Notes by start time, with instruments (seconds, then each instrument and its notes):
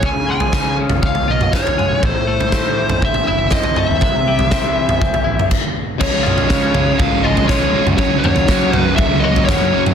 0.03 picked electric bass C#2, clean electric guitar C#3, lead electric guitar G#5, kick, floor tom
0.17 picked electric bass C#3
0.29 clean electric guitar G#3, lead electric guitar G#5
0.40 floor tom
0.53 picked electric bass C#3, clean electric guitar C#4, kick, snare
0.80 clean electric guitar C#3
0.89 floor tom, mid tom
1.02 picked electric bass C#2, clean electric guitar C#4, lead electric guitar F5, kick
1.15 floor tom
1.28 picked electric bass B1, clean electric guitar F4, lead electric guitar D#5
1.41 mid tom
1.52 clean electric guitar C#4, lead electric guitar C#5, kick, snare, mid tom
1.67 floor tom
1.78 clean electric guitar G#3, mid tom
1.91 picked electric bass B1
2.03 picked electric bass A1, clean electric guitar A2, lead electric guitar C5, kick, floor tom
2.15 picked electric bass A2
2.27 clean electric guitar A3
2.41 floor tom
2.52 picked electric bass A2, clean electric guitar C4, kick, snare
2.78 clean electric guitar E3
2.89 floor tom, mid tom
3.02 picked electric bass A1, clean electric guitar C4, lead electric guitar E5, kick
3.14 floor tom
3.28 picked electric bass F#1, clean electric guitar E4, lead electric guitar E5
3.50 clean electric guitar C4, lead electric guitar D#5, kick, snare, mid tom
3.63 floor tom
3.76 clean electric guitar A3, lead electric guitar E5, mid tom
3.91 picked electric bass D#2
4.01 picked electric bass C2, clean electric guitar C3, kick, floor tom
4.16 picked electric bass C3
4.28 clean electric guitar G3
4.39 floor tom
4.51 picked electric bass C3, clean electric guitar C4, kick, snare
4.75 clean electric guitar E3
4.89 floor tom, mid tom
5.01 picked electric bass C2, clean electric guitar C4, kick
5.14 floor tom
5.24 picked electric bass A1, clean electric guitar E4
5.39 mid tom
5.51 kick, crash
6.00 picked electric bass C#2, overdriven electric guitar C#3 F3 G#3 C#4, lead electric guitar C#5, kick, floor tom, crash
6.23 picked electric bass B1, overdriven electric guitar C#3 F3 G#3 C#4, clean electric guitar F3 G#3 C#4 F4, lead electric guitar C#5, mid tom
6.38 floor tom
6.49 overdriven electric guitar C#3 F3 G#3 C#4, picked electric bass C#3, clean electric guitar F3 G#3 C#4 F4, kick, snare
6.74 overdriven electric guitar C#3 F3 G#3 C#4, floor tom, mid tom
6.98 picked electric bass G#1, overdriven electric guitar C#3 F3 G#3 C#4, lead electric guitar F5, kick, floor tom
7.23 overdriven electric guitar C#3 F3 G#3 C#4, clean electric guitar F3 G#3 C#4 F4, lead electric guitar D#5
7.37 floor tom
7.48 picked electric bass B1, overdriven electric guitar C#3 F3 G#3 C#4, clean electric guitar F3 G#3 C#4 F4, lead electric guitar C#5, kick, snare
7.62 picked electric bass C#2
7.74 overdriven electric guitar C#3 F3 G#3 C#4
7.87 picked electric bass C#2, mid tom
7.98 overdriven electric guitar F#2 C#3 F#3 A#3 C#4, picked electric bass F#2, lead electric guitar C#5, kick, floor tom
8.20 overdriven electric guitar F#2 C#3, lead electric guitar C#5
8.24 picked electric bass D#2, overdriven electric guitar F#3 A#3 C#4, clean electric guitar F#3 A#3 C#4 F#4, mid tom
8.36 floor tom
8.48 overdriven electric guitar F#2 C#3 F#3 A#3 C#4, picked electric bass F#3, clean electric guitar F#3 A#3 C#4 F#4, kick, snare
8.73 overdriven electric guitar F#2 C#3 F#3 A#3 C#4, floor tom, mid tom
8.79 lead electric guitar B4
8.96 picked electric bass C#2, overdriven electric guitar F#2 C#3 F#3 A#3 C#4, lead electric guitar E5, kick, floor tom
9.20 overdriven electric guitar F#2, clean electric guitar F#4, lead electric guitar D#5
9.24 overdriven electric guitar C#3 F#3 A#3 C#4, clean electric guitar F#3 A#3 C#4
9.36 floor tom
9.45 picked electric bass D#2, overdriven electric guitar F#2 C#3 F#3, lead electric guitar C#5, kick, snare, mid tom
9.49 clean electric guitar F#3 A#3 C#4 F#4, overdriven electric guitar A#3 C#4
9.62 picked electric bass F#2
9.72 overdriven electric guitar F#2 C#3 F#3 A#3 C#4
9.86 picked electric bass F#2, mid tom